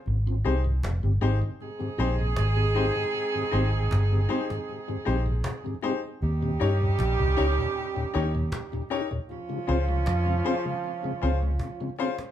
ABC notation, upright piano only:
X:1
M:4/4
L:1/16
Q:1/4=78
K:Ab
V:1 name="Upright piano"
z2 [EGAc] z3 [EGAc] z2 [Ac] [EGAc] z3 [EGAc] [Ac] | z2 [EGAc] z3 [EGAc] z2 [Ac] [EGAc] z3 [EGAc] [Ac] | z2 [EGBd] z3 [EGBd] z2 [Bd] [EGBd] z3 [EGBd] [Bd] | z2 [DFAc] z3 [DFAc] z2 [Ac] [DFAc] z3 [DFAc] [Ac] |]